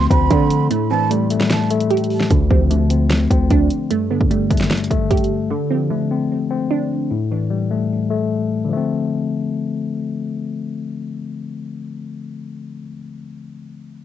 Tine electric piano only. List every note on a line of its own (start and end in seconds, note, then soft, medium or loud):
0.00 0.11 D3 loud
0.00 0.31 F3 medium
0.00 0.51 A3 medium
0.00 0.10 C4 medium
0.10 0.70 C4 medium
0.71 1.71 A2 loud
0.91 1.91 E3 medium
1.10 2.10 G3 medium
1.31 1.69 A3 medium
1.70 2.30 A3 medium
2.30 3.31 D3 medium
2.51 3.51 F3 medium
2.70 3.70 A3 medium
2.90 3.29 C4 medium
3.31 3.91 C4 medium
3.91 4.91 G2 medium
4.11 5.11 D3 medium
4.31 5.31 G3 medium
4.51 4.89 A3 medium
4.91 5.51 A3 medium
5.51 6.51 D3 medium
5.71 6.71 F3 medium
5.91 6.91 A3 medium
6.11 6.49 C4 medium
6.50 7.10 C4 medium
7.11 8.11 A2 loud
7.31 8.31 E3 medium
7.50 8.50 G3 medium
7.71 8.09 A3 medium
8.10 8.70 A3 medium
8.65 12.79 D3 medium
8.69 12.83 F3 medium
8.69 12.87 A3 medium
8.77 12.91 C4 medium